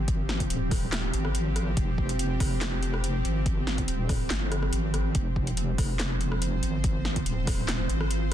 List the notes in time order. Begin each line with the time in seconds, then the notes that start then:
Already playing: G#1 F3 C4 G4
0.08 kick, closed hi-hat
0.29 snare
0.40 kick, closed hi-hat
0.50 D#1, closed hi-hat
0.71 kick, cross-stick, open hi-hat
0.92 snare, clap, closed hi-hat
1.14 G#1, closed hi-hat
1.25 cross-stick
1.35 closed hi-hat
1.56 cross-stick, closed hi-hat
1.77 F1, kick, closed hi-hat
1.98 kick
2.09 closed hi-hat
2.19 closed hi-hat
2.40 F1, kick, cross-stick, open hi-hat
2.61 cross-stick, snare, clap, closed hi-hat
2.83 closed hi-hat
2.94 cross-stick
3.04 closed hi-hat
3.25 G#1, closed hi-hat
3.46 kick, closed hi-hat
3.67 snare
3.78 kick, closed hi-hat
3.88 D#1, closed hi-hat
4.09 kick, cross-stick, open hi-hat
4.30 G1, snare, clap, closed hi-hat
4.52 cross-stick, closed hi-hat
4.63 cross-stick
4.73 G#1, closed hi-hat
4.94 cross-stick, closed hi-hat
5.15 F1 C5, kick, closed hi-hat
5.36 kick
5.47 closed hi-hat
5.57 closed hi-hat
5.78 F1, kick, cross-stick, open hi-hat
6.00 cross-stick, snare, clap, closed hi-hat
6.21 closed hi-hat
6.32 cross-stick
6.42 closed hi-hat
6.63 G#1, closed hi-hat
6.84 kick, closed hi-hat
7.05 snare
7.16 kick, closed hi-hat
7.26 D#1, closed hi-hat
7.47 kick, cross-stick, open hi-hat
7.68 snare, clap, closed hi-hat
7.90 G#1, closed hi-hat
8.01 cross-stick
8.11 closed hi-hat